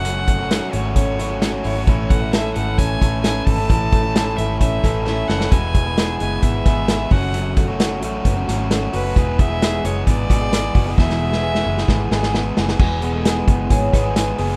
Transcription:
<<
  \new Staff \with { instrumentName = "Violin" } { \time 4/4 \key e \mixolydian \tempo 4 = 132 fis''4. cis''8 cis''4 cis''8 cis''8~ | cis''8 fis''8 e''8 fis''8 gis''4 gis''8 a''8~ | a''4. e''8 e''4 e''8 fis''8 | gis''4. gis''8 e''4. fis''8~ |
fis''8 r2. b'8~ | b'8 e''4 cis''8 d''2 | e''2. r4 | r1 | }
  \new Staff \with { instrumentName = "Vibraphone" } { \time 4/4 \key e \mixolydian r1 | r1 | r1 | r1 |
r1 | r1 | r1 | gis'8. a'16 r4 cis''8. b'4~ b'16 | }
  \new Staff \with { instrumentName = "Clean electric guitar" } { \time 4/4 \key e \mixolydian fis,8 a8 fis'8 a8 cis'8 e'16 fis'16 cis'8 e'16 fis'16 | a,8 a8 a'8 a8 cis'8 a'8 cis'8 a'8 | a,8 a8 a'8 a8 cis'8 a'8 cis'8 a'8 | e,8 gis8 gis'8 gis8 b8 gis'8 b8 fis,8 |
fis,8 a8 fis'8 a8 b16 cis'16 fis'8 cis'8 fis'8 | e,8 gis8 gis'8 gis8 b8 fis'16 gis'16 b8 fis'16 gis'16 | e,8 gis8 gis'8 gis8 b8 gis'8 b8 gis'8 | <e, gis'>8 b8 gis'8 b8 gis'8 b8 gis'8 b8 | }
  \new Staff \with { instrumentName = "Overdriven electric guitar" } { \time 4/4 \key e \mixolydian <fis, cis fis a cis' fis'>8. <fis a cis' fis'>8. <fis a cis' fis'>4 <fis a cis' fis'>8 <fis a cis' fis'>8. <fis a cis' fis'>16 | <a, e a cis' e'>8. <a cis' e'>8. <e a cis' e'>4 <e a cis' e'>8 <e a cis' e'>8. <a cis' e'>16 | <a, e a cis' e'>8. <a cis' e'>8. <e a cis' e'>4 <e a cis' e'>8 <e a cis' e'>8. <a cis' e'>16 | <e, b, e gis b e'>8. <e gis b e'>8. <e gis b e'>4 <e gis b e'>8 <e gis b e'>8 <fis, cis fis a cis' fis'>8~ |
<fis, cis fis a cis' fis'>8. <fis a cis' fis'>8. <fis a cis' fis'>4 <fis a cis' fis'>8 <fis a cis' fis'>8. <fis a cis' fis'>16 | <e, b, e gis b gis'>8. <e gis b gis'>8. <e gis b gis'>4 <e gis b gis'>8 <e gis b gis'>8. <e gis b gis'>16 | <e, b, e gis b gis'>8. <e gis b gis'>8. <e gis b gis'>4 <e gis b gis'>8 <e gis b gis'>8. <e gis b gis'>16 | <e, b, e gis b gis'>8 <e gis b gis'>16 <e gis b gis'>4.~ <e gis b gis'>16 <e gis b gis'>8 <e gis b gis'>8 <e gis b gis'>8 | }
  \new Staff \with { instrumentName = "Fingered electric bass" } { \clef bass \time 4/4 \key e \mixolydian fis,,4. gis,,2 gis,,8 | a,,4. gis,,8 a,,8 a,,4 gis,,8 | a,,4. gis,,8 a,,8 a,,4 fis,,8 | e,,4. fis,,8 gis,,8 gis,,4 fis,,8~ |
fis,,4. a,,8 fis,,8 gis,,4 fis,,8 | e,,4. fis,,8 gis,,8 gis,,4 fis,,8 | e,,4. fis,,8 gis,,8 gis,,4 fis,,8 | e,,4. fis,,8 gis,,8 gis,,4 fis,,8 | }
  \new DrumStaff \with { instrumentName = "Drums" } \drummode { \time 4/4 hh8 <hh bd>8 <hh sn>8 hh8 <hh bd>8 hh8 <hh sn>8 hho8 | <hh bd>8 <hh bd>8 <hh sn>8 hh8 <hh bd>8 <hh bd>8 <hh sn>8 <hho bd>8 | <hh bd>8 <hh bd>8 <hh sn>8 hh8 <hh bd>8 <hh bd sn>8 sn8 sn16 sn16 | <hh bd>8 <hh bd>8 <hh sn>8 hh8 <hh bd>8 <hh bd sn>8 <hh sn>8 <hho bd>8 |
hh8 <hh bd>8 <hh sn>8 hh8 <hh bd>8 <hh sn>8 <hh sn>8 hho8 | <hh bd>8 <hh bd>8 <hh sn>8 hh8 <hh bd>8 <hh bd>8 <hh sn>8 <hho bd>8 | <bd sn>16 sn8 sn16 r16 sn8 sn16 <bd sn>8 sn16 sn16 sn8 sn16 sn16 | <cymc bd>8 hh8 <hh sn>8 <hh bd>8 <hh bd>8 <hh bd sn>8 <hh sn>8 hho8 | }
>>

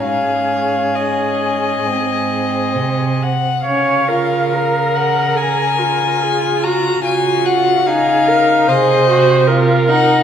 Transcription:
<<
  \new Staff \with { instrumentName = "Violin" } { \time 4/4 \key des \major \tempo 4 = 71 f''4 ees''2~ ees''8 ges''8 | f''4. ges''8 aes''4. bes''8 | aes''8 ges''8 f''4 ees''4 r8 ges''8 | }
  \new Staff \with { instrumentName = "Viola" } { \time 4/4 \key des \major aes'2.~ aes'8 r8 | des''8 bes'4. aes'8 f'4. | ges'4 aes'8 bes'8 c''4 bes'4 | }
  \new Staff \with { instrumentName = "Violin" } { \time 4/4 \key des \major des'2 c'4.~ c'16 r16 | des'8 f'8 bes'2 aes'8 ges'8 | f'4 ees'4 aes'8 ges'8 f'8 ees'8 | }
  \new Staff \with { instrumentName = "Cello" } { \clef bass \time 4/4 \key des \major aes,2 aes,4 c8. r16 | des1 | des2 c2 | }
>>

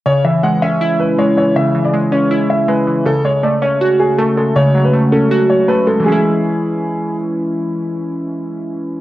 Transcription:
<<
  \new Staff \with { instrumentName = "Grand piano" } { \time 4/4 \key cis \minor \tempo 4 = 160 cis''8 e''8 fis''8 e''4 b'8 cis''8 cis''8 | e''8. d''16 r8 cis''4 e''8 b'4 | a'8 cis''8 d''8 cis''4 gis'8 a'8 a'8 | cis''8. b'16 r8 a'4 cis''8 b'8 a'8 |
gis'2. r4 | r1 | }
  \new Staff \with { instrumentName = "Synth keys" } { \clef bass \time 4/4 \key cis \minor cis8 e8 gis8 cis'8 e'4 gis8 e8 | cis8 e8 gis8 cis'8 e'4 gis8 e8 | cis8 gis8 a8 cis'8 fis'4 a8 gis8 | cis8 fis8 a8 cis'8 fis'4 a8 gis8 |
<e gis cis' e'>1~ | <e gis cis' e'>1 | }
>>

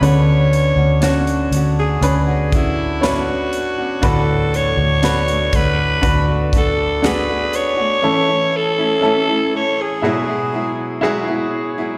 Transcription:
<<
  \new Staff \with { instrumentName = "Alto saxophone" } { \time 4/4 \key d \lydian \tempo 4 = 60 cis''4~ cis''16 r8 gis'8. e'8 fis'4 | a'8 cis''4 b'8. r16 a'8 b'8 cis''8~ | cis''8 a'4 cis''16 gis'4~ gis'16 r4 | }
  \new Staff \with { instrumentName = "Grand piano" } { \time 4/4 \key d \lydian <cis' d' b'>4 <cis' d' fis'>4 <cis' d' b'>4 <d' b' cis''>4 | <d' fis' b'>4 <d' fis' b'>4 <d' fis' b'>4 <d' fis' gis'>4 | <cis' e' a'>4 <cis' e' a'>4 <e' fis' gis'>4 <e' fis' gis'>4 | }
  \new Staff \with { instrumentName = "Grand piano" } { \clef bass \time 4/4 \key d \lydian d4. r2 r8 | a,4. r2 r8 | e4. r8 b,4. r8 | }
  \new Staff \with { instrumentName = "Nylon-string guitar" } { \time 4/4 \key d \lydian <d b cis' fis'>8. <b cis' fis'>16 <d b cis' fis'>8 <d b cis' fis'>8. <b cis' fis'>16 <d b cis' fis'>8 <d b cis' fis'>16 <b cis' fis'>8 <b cis' fis'>16 | <d a b fis'>8. <a b fis'>16 <d a b fis'>16 <a b fis'>16 <d a b fis'>8. <a b fis'>16 <d a b fis'>8 <d a b fis'>16 <a b fis'>8 <a b fis'>16 | <e a cis' e'>16 <a cis' e'>8 <a cis' e'>16 <e a cis' e'>16 <a cis' e'>16 <e a cis' e'>8 <e, b, fis gis b e'>16 <fis gis b e'>16 <fis gis b e'>8 <e, b, fis gis b e'>16 <fis gis b e'>8 <fis gis b e'>16 | }
  \new Staff \with { instrumentName = "Fingered electric bass" } { \clef bass \time 4/4 \key d \lydian d,8. d,8. d,8 d,4. r8 | d,8. d,8. d,8 d,4. r8 | r1 | }
  \new DrumStaff \with { instrumentName = "Drums" } \drummode { \time 4/4 hh8 hh8 <hh sn>16 hh16 hh8 hh8 <hh bd>8 <hh sn>8 hh8 | <hh bd>8 hh8 <hh sn>16 hh16 <hh bd>8 <hh bd>8 <hh bd>8 <hh sn>8 hh8 | r4 r4 r4 r4 | }
>>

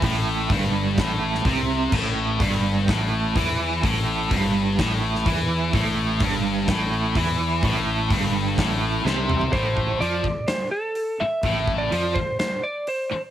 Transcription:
<<
  \new Staff \with { instrumentName = "Lead electric guitar" } { \time 4/4 \key a \minor \tempo 4 = 126 r1 | r1 | r1 | r1 |
r1 | c''4 d''4 c''8 a'4 e''8~ | e''8. d''8. c''8 c''8 d''8 c''8. r16 | }
  \new Staff \with { instrumentName = "Distorted electric guitar" } { \clef bass \time 4/4 \key a \minor a,4 g,4 a,4 c4 | a,4 g,4 a,4 e4 | a,4 g,4 a,4 e4 | a,4 g,4 a,4 e4 |
a,4 g,4 a,4 c4 | a,4 f8 r2 r8 | a,4 f8 r2 r8 | }
  \new Staff \with { instrumentName = "Overdriven electric guitar" } { \clef bass \time 4/4 \key a \minor a,4 g,4 a,4 c4 | a,4 g,4 a,4 e4 | a,4 g,4 a,4 e4 | a,4 g,4 a,4 e4 |
a,4 g,4 a,4 c4 | a,4 f8 r2 r8 | a,4 f8 r2 r8 | }
  \new Staff \with { instrumentName = "Fingered electric bass" } { \clef bass \time 4/4 \key a \minor a,,4 g,,4 a,,4 c,4 | a,,4 g,,4 a,,4 e,4 | a,,4 g,,4 a,,4 e,4 | a,,4 g,,4 a,,4 e,4 |
a,,4 g,,4 a,,4 c,4 | a,,4 f,8 r2 r8 | a,,4 f,8 r2 r8 | }
  \new DrumStaff \with { instrumentName = "Drums" } \drummode { \time 4/4 <hho bd>4 <hho bd>4 <hho bd sn>8. sn16 <hho bd>4 | <cymc bd>4 <hho bd>4 <hho bd sn>4 <hho bd>4 | <hho bd>4 <hho bd>4 <hho bd sn>8. sn16 <hho bd>4 | <hho bd>4 <hho bd>4 <hho bd sn>4 <hho bd>4 |
<hho bd>4 <hho bd>4 <hho bd sn>4 sn8 toml16 tomfh16 | <hho bd>8 bd8 hho8 bd8 <hho sn>4 hho4 | <hho bd>8 bd8 hho8 bd8 <hho sn>4 hho4 | }
>>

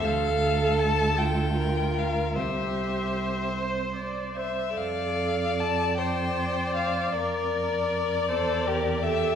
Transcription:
<<
  \new Staff \with { instrumentName = "Violin" } { \time 6/8 \key f \major \tempo 4. = 51 f''4 a''8 g''4 f''8 | e''4. r4 e''8 | f''4 a''8 g''4 f''8 | d''2~ d''8 e''8 | }
  \new Staff \with { instrumentName = "Viola" } { \time 6/8 \key f \major a'4. f'4. | g'4. c''8 d''8 c''8 | a'4. d''4.~ | d''4. c''8 bes'8 a'8 | }
  \new Staff \with { instrumentName = "Violin" } { \time 6/8 \key f \major a'2 bes'4 | c''2~ c''8. r16 | d''4. c''4. | bes'4. a'8 g'8 g'8 | }
  \new Staff \with { instrumentName = "Cello" } { \clef bass \time 6/8 \key f \major d,2. | c,2~ c,8. r16 | f,2. | f,4. e,4. | }
>>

